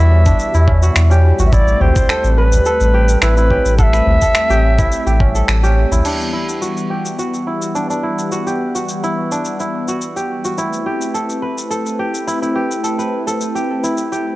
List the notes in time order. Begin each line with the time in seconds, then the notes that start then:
Already playing: E2 B2 E3 G3 D4 E4 F#4 E5 F#5
0.11 tabla na, tabla tin
0.26 D4, kick, shaker
0.39 shaker
0.54 E2 E4, shaker
0.67 kick, tabla na
0.82 F#4, shaker
0.96 E2, finger snap, shaker
1.10 G4, tabla na, shaker
1.24 tabla tin
1.39 A1 F#4, tabla na, tabla ge, shaker
1.46 E5
1.52 A3 C4 E4 D5, kick, shaker
1.68 shaker
1.80 A1 G4 C5, tabla ge
1.96 kick, shaker
2.09 A4, finger snap, shaker
2.24 A1, shaker
2.37 B4, tabla na
2.52 tabla ge, shaker
2.66 A4, shaker
2.80 A1, shaker
2.94 G4
3.09 shaker
3.22 A1 E4 B4, finger snap, shaker
3.37 E4, shaker
3.51 G4, kick, tabla tin
3.65 A1, shaker
3.78 A4 F#5, kick, shaker
3.83 E5
3.93 B4, finger snap, shaker
4.07 A1, tabla ge
4.22 A4, kick, shaker
4.35 finger snap, shaker
4.50 A1 G4, tabla na, shaker
4.63 tabla na, tabla tin
4.79 E4, kick, shaker
4.92 shaker
5.06 A1 G4, shaker
5.20 kick, tabla na
5.35 A4, shaker
5.48 A1, finger snap, shaker
5.63 G4, tabla na, shaker
5.77 tabla tin
5.91 A1 E4, tabla na, tabla ge, shaker
6.05 E3 G3 B3 D4 F#5, crash, shaker
6.21 shaker
6.33 E4
6.49 shaker
6.61 F#4, shaker
6.77 shaker
6.90 G4
7.06 shaker
7.19 F#4, shaker
7.34 shaker
7.47 E4
7.62 shaker
7.75 D4, shaker
7.90 D4, shaker
8.03 E4
8.19 shaker
8.32 F#4, shaker
8.47 G4, shaker
8.75 F#4, shaker
8.89 shaker
9.04 E4, shaker
9.32 D4, shaker
9.45 shaker
9.60 E4, shaker
9.88 F#4, shaker
10.02 shaker
10.16 G4, shaker
10.45 F#4, shaker
10.58 A3 C4 E4 B4, shaker
10.73 shaker
10.86 G4
11.01 shaker
11.14 A4, shaker
11.30 shaker
11.42 B4
11.58 shaker
11.70 A4, shaker
11.86 shaker
11.99 G4
12.15 shaker
12.27 E4, shaker
12.42 E4, shaker
12.56 G4
12.71 shaker
12.84 A4, shaker
12.99 B4, shaker
13.27 A4, shaker
13.41 shaker
13.55 G4, shaker
13.84 E4, shaker
13.98 shaker
14.12 G4, shaker